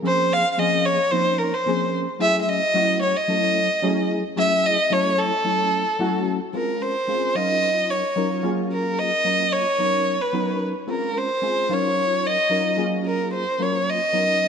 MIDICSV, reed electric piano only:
0, 0, Header, 1, 2, 480
1, 0, Start_track
1, 0, Tempo, 542495
1, 32, Time_signature, 4, 2, 24, 8
1, 12813, End_track
2, 0, Start_track
2, 0, Title_t, "Reed electric piano"
2, 0, Program_c, 0, 4
2, 22, Note_on_c, 0, 53, 75
2, 25, Note_on_c, 0, 58, 64
2, 26, Note_on_c, 0, 60, 67
2, 30, Note_on_c, 0, 61, 63
2, 32, Note_on_c, 0, 68, 79
2, 369, Note_off_c, 0, 53, 0
2, 371, Note_off_c, 0, 58, 0
2, 372, Note_off_c, 0, 60, 0
2, 373, Note_off_c, 0, 61, 0
2, 374, Note_off_c, 0, 68, 0
2, 507, Note_on_c, 0, 58, 70
2, 509, Note_on_c, 0, 53, 78
2, 512, Note_on_c, 0, 60, 70
2, 513, Note_on_c, 0, 61, 74
2, 516, Note_on_c, 0, 68, 87
2, 851, Note_off_c, 0, 58, 0
2, 852, Note_off_c, 0, 53, 0
2, 854, Note_off_c, 0, 60, 0
2, 855, Note_off_c, 0, 61, 0
2, 856, Note_off_c, 0, 68, 0
2, 988, Note_on_c, 0, 53, 68
2, 988, Note_on_c, 0, 58, 60
2, 989, Note_on_c, 0, 60, 60
2, 991, Note_on_c, 0, 61, 53
2, 994, Note_on_c, 0, 63, 70
2, 1331, Note_off_c, 0, 53, 0
2, 1332, Note_off_c, 0, 58, 0
2, 1332, Note_off_c, 0, 60, 0
2, 1333, Note_off_c, 0, 61, 0
2, 1334, Note_off_c, 0, 63, 0
2, 1469, Note_on_c, 0, 53, 71
2, 1469, Note_on_c, 0, 58, 66
2, 1474, Note_on_c, 0, 60, 70
2, 1476, Note_on_c, 0, 61, 69
2, 1481, Note_on_c, 0, 68, 76
2, 1812, Note_off_c, 0, 53, 0
2, 1812, Note_off_c, 0, 58, 0
2, 1814, Note_off_c, 0, 60, 0
2, 1815, Note_off_c, 0, 61, 0
2, 1818, Note_off_c, 0, 68, 0
2, 1940, Note_on_c, 0, 54, 76
2, 1943, Note_on_c, 0, 57, 72
2, 1945, Note_on_c, 0, 61, 73
2, 1946, Note_on_c, 0, 64, 69
2, 1950, Note_on_c, 0, 68, 85
2, 2287, Note_off_c, 0, 54, 0
2, 2288, Note_off_c, 0, 57, 0
2, 2289, Note_off_c, 0, 61, 0
2, 2290, Note_off_c, 0, 64, 0
2, 2292, Note_off_c, 0, 68, 0
2, 2423, Note_on_c, 0, 54, 74
2, 2425, Note_on_c, 0, 57, 67
2, 2425, Note_on_c, 0, 61, 72
2, 2430, Note_on_c, 0, 64, 71
2, 2433, Note_on_c, 0, 66, 83
2, 2768, Note_off_c, 0, 54, 0
2, 2769, Note_off_c, 0, 57, 0
2, 2769, Note_off_c, 0, 61, 0
2, 2771, Note_off_c, 0, 64, 0
2, 2773, Note_off_c, 0, 66, 0
2, 2901, Note_on_c, 0, 54, 73
2, 2905, Note_on_c, 0, 57, 68
2, 2906, Note_on_c, 0, 61, 66
2, 2908, Note_on_c, 0, 64, 66
2, 2911, Note_on_c, 0, 69, 73
2, 3246, Note_off_c, 0, 54, 0
2, 3248, Note_off_c, 0, 57, 0
2, 3249, Note_off_c, 0, 61, 0
2, 3250, Note_off_c, 0, 64, 0
2, 3252, Note_off_c, 0, 69, 0
2, 3382, Note_on_c, 0, 54, 86
2, 3384, Note_on_c, 0, 61, 79
2, 3387, Note_on_c, 0, 57, 74
2, 3388, Note_on_c, 0, 64, 77
2, 3391, Note_on_c, 0, 68, 92
2, 3727, Note_off_c, 0, 54, 0
2, 3728, Note_off_c, 0, 61, 0
2, 3729, Note_off_c, 0, 57, 0
2, 3730, Note_off_c, 0, 64, 0
2, 3731, Note_off_c, 0, 68, 0
2, 3858, Note_on_c, 0, 54, 71
2, 3861, Note_on_c, 0, 57, 65
2, 3861, Note_on_c, 0, 61, 68
2, 3862, Note_on_c, 0, 64, 67
2, 3868, Note_on_c, 0, 68, 81
2, 4204, Note_off_c, 0, 54, 0
2, 4206, Note_off_c, 0, 57, 0
2, 4206, Note_off_c, 0, 61, 0
2, 4206, Note_off_c, 0, 64, 0
2, 4209, Note_off_c, 0, 68, 0
2, 4337, Note_on_c, 0, 54, 78
2, 4340, Note_on_c, 0, 61, 72
2, 4342, Note_on_c, 0, 57, 70
2, 4344, Note_on_c, 0, 64, 69
2, 4350, Note_on_c, 0, 69, 81
2, 4683, Note_off_c, 0, 54, 0
2, 4685, Note_off_c, 0, 61, 0
2, 4686, Note_off_c, 0, 57, 0
2, 4687, Note_off_c, 0, 64, 0
2, 4690, Note_off_c, 0, 69, 0
2, 4811, Note_on_c, 0, 54, 60
2, 4816, Note_on_c, 0, 61, 59
2, 4818, Note_on_c, 0, 57, 61
2, 4822, Note_on_c, 0, 64, 55
2, 4822, Note_on_c, 0, 69, 66
2, 5160, Note_off_c, 0, 54, 0
2, 5163, Note_off_c, 0, 61, 0
2, 5164, Note_off_c, 0, 57, 0
2, 5166, Note_off_c, 0, 64, 0
2, 5166, Note_off_c, 0, 69, 0
2, 5298, Note_on_c, 0, 54, 81
2, 5305, Note_on_c, 0, 57, 73
2, 5306, Note_on_c, 0, 61, 79
2, 5307, Note_on_c, 0, 64, 76
2, 5312, Note_on_c, 0, 66, 95
2, 5644, Note_off_c, 0, 54, 0
2, 5647, Note_off_c, 0, 57, 0
2, 5648, Note_off_c, 0, 61, 0
2, 5648, Note_off_c, 0, 64, 0
2, 5651, Note_off_c, 0, 66, 0
2, 5779, Note_on_c, 0, 60, 59
2, 5780, Note_on_c, 0, 56, 70
2, 5786, Note_on_c, 0, 61, 64
2, 5786, Note_on_c, 0, 65, 61
2, 5791, Note_on_c, 0, 70, 69
2, 6125, Note_off_c, 0, 56, 0
2, 6125, Note_off_c, 0, 60, 0
2, 6128, Note_off_c, 0, 61, 0
2, 6128, Note_off_c, 0, 65, 0
2, 6131, Note_off_c, 0, 70, 0
2, 6261, Note_on_c, 0, 56, 64
2, 6265, Note_on_c, 0, 60, 59
2, 6265, Note_on_c, 0, 61, 59
2, 6269, Note_on_c, 0, 65, 59
2, 6271, Note_on_c, 0, 68, 71
2, 6494, Note_off_c, 0, 61, 0
2, 6498, Note_off_c, 0, 65, 0
2, 6502, Note_off_c, 0, 56, 0
2, 6502, Note_on_c, 0, 54, 61
2, 6504, Note_off_c, 0, 60, 0
2, 6505, Note_on_c, 0, 61, 58
2, 6507, Note_off_c, 0, 68, 0
2, 6509, Note_on_c, 0, 63, 58
2, 6509, Note_on_c, 0, 65, 58
2, 6515, Note_on_c, 0, 70, 69
2, 7089, Note_off_c, 0, 54, 0
2, 7090, Note_off_c, 0, 61, 0
2, 7092, Note_off_c, 0, 63, 0
2, 7092, Note_off_c, 0, 65, 0
2, 7095, Note_off_c, 0, 70, 0
2, 7217, Note_on_c, 0, 54, 73
2, 7220, Note_on_c, 0, 61, 68
2, 7223, Note_on_c, 0, 63, 65
2, 7223, Note_on_c, 0, 65, 63
2, 7226, Note_on_c, 0, 70, 84
2, 7444, Note_off_c, 0, 54, 0
2, 7450, Note_off_c, 0, 61, 0
2, 7451, Note_off_c, 0, 65, 0
2, 7454, Note_on_c, 0, 54, 63
2, 7454, Note_on_c, 0, 58, 61
2, 7461, Note_on_c, 0, 61, 59
2, 7461, Note_on_c, 0, 65, 61
2, 7464, Note_off_c, 0, 63, 0
2, 7465, Note_off_c, 0, 70, 0
2, 7467, Note_on_c, 0, 68, 66
2, 8045, Note_off_c, 0, 54, 0
2, 8045, Note_off_c, 0, 58, 0
2, 8049, Note_off_c, 0, 61, 0
2, 8049, Note_off_c, 0, 65, 0
2, 8052, Note_off_c, 0, 68, 0
2, 8174, Note_on_c, 0, 54, 63
2, 8175, Note_on_c, 0, 58, 54
2, 8178, Note_on_c, 0, 61, 60
2, 8181, Note_on_c, 0, 65, 60
2, 8184, Note_on_c, 0, 70, 71
2, 8523, Note_off_c, 0, 54, 0
2, 8523, Note_off_c, 0, 58, 0
2, 8525, Note_off_c, 0, 61, 0
2, 8526, Note_off_c, 0, 65, 0
2, 8528, Note_off_c, 0, 70, 0
2, 8657, Note_on_c, 0, 54, 62
2, 8660, Note_on_c, 0, 59, 55
2, 8662, Note_on_c, 0, 63, 64
2, 8663, Note_on_c, 0, 61, 57
2, 8665, Note_on_c, 0, 70, 78
2, 9004, Note_off_c, 0, 54, 0
2, 9006, Note_off_c, 0, 59, 0
2, 9007, Note_off_c, 0, 63, 0
2, 9008, Note_off_c, 0, 61, 0
2, 9009, Note_off_c, 0, 70, 0
2, 9138, Note_on_c, 0, 54, 80
2, 9139, Note_on_c, 0, 59, 67
2, 9140, Note_on_c, 0, 61, 68
2, 9145, Note_on_c, 0, 63, 71
2, 9149, Note_on_c, 0, 70, 80
2, 9485, Note_off_c, 0, 54, 0
2, 9486, Note_off_c, 0, 59, 0
2, 9486, Note_off_c, 0, 61, 0
2, 9488, Note_off_c, 0, 63, 0
2, 9490, Note_off_c, 0, 70, 0
2, 9617, Note_on_c, 0, 56, 65
2, 9619, Note_on_c, 0, 60, 65
2, 9624, Note_on_c, 0, 61, 64
2, 9624, Note_on_c, 0, 65, 62
2, 9630, Note_on_c, 0, 70, 72
2, 9965, Note_off_c, 0, 56, 0
2, 9966, Note_off_c, 0, 60, 0
2, 9968, Note_off_c, 0, 61, 0
2, 9968, Note_off_c, 0, 65, 0
2, 9971, Note_off_c, 0, 70, 0
2, 10101, Note_on_c, 0, 56, 68
2, 10102, Note_on_c, 0, 60, 60
2, 10106, Note_on_c, 0, 61, 59
2, 10107, Note_on_c, 0, 65, 57
2, 10107, Note_on_c, 0, 68, 71
2, 10333, Note_off_c, 0, 61, 0
2, 10339, Note_off_c, 0, 65, 0
2, 10343, Note_on_c, 0, 54, 66
2, 10344, Note_off_c, 0, 56, 0
2, 10344, Note_off_c, 0, 60, 0
2, 10344, Note_on_c, 0, 61, 61
2, 10344, Note_on_c, 0, 63, 62
2, 10347, Note_off_c, 0, 68, 0
2, 10350, Note_on_c, 0, 65, 60
2, 10352, Note_on_c, 0, 70, 69
2, 10931, Note_off_c, 0, 54, 0
2, 10931, Note_off_c, 0, 61, 0
2, 10932, Note_off_c, 0, 63, 0
2, 10934, Note_off_c, 0, 65, 0
2, 10935, Note_off_c, 0, 70, 0
2, 11055, Note_on_c, 0, 54, 75
2, 11062, Note_on_c, 0, 61, 67
2, 11064, Note_on_c, 0, 63, 71
2, 11065, Note_on_c, 0, 65, 70
2, 11068, Note_on_c, 0, 70, 84
2, 11282, Note_off_c, 0, 54, 0
2, 11286, Note_off_c, 0, 61, 0
2, 11290, Note_off_c, 0, 65, 0
2, 11292, Note_on_c, 0, 54, 60
2, 11294, Note_on_c, 0, 58, 60
2, 11296, Note_on_c, 0, 61, 55
2, 11300, Note_on_c, 0, 68, 72
2, 11301, Note_on_c, 0, 65, 60
2, 11306, Note_off_c, 0, 63, 0
2, 11308, Note_off_c, 0, 70, 0
2, 11886, Note_off_c, 0, 54, 0
2, 11887, Note_off_c, 0, 58, 0
2, 11888, Note_off_c, 0, 61, 0
2, 11890, Note_off_c, 0, 68, 0
2, 11891, Note_off_c, 0, 65, 0
2, 12016, Note_on_c, 0, 54, 66
2, 12021, Note_on_c, 0, 58, 59
2, 12022, Note_on_c, 0, 61, 60
2, 12025, Note_on_c, 0, 65, 58
2, 12027, Note_on_c, 0, 70, 71
2, 12366, Note_off_c, 0, 54, 0
2, 12368, Note_off_c, 0, 58, 0
2, 12369, Note_off_c, 0, 61, 0
2, 12370, Note_off_c, 0, 65, 0
2, 12371, Note_off_c, 0, 70, 0
2, 12498, Note_on_c, 0, 59, 57
2, 12499, Note_on_c, 0, 54, 71
2, 12505, Note_on_c, 0, 61, 57
2, 12507, Note_on_c, 0, 63, 58
2, 12508, Note_on_c, 0, 70, 74
2, 12813, Note_off_c, 0, 54, 0
2, 12813, Note_off_c, 0, 59, 0
2, 12813, Note_off_c, 0, 61, 0
2, 12813, Note_off_c, 0, 63, 0
2, 12813, Note_off_c, 0, 70, 0
2, 12813, End_track
0, 0, End_of_file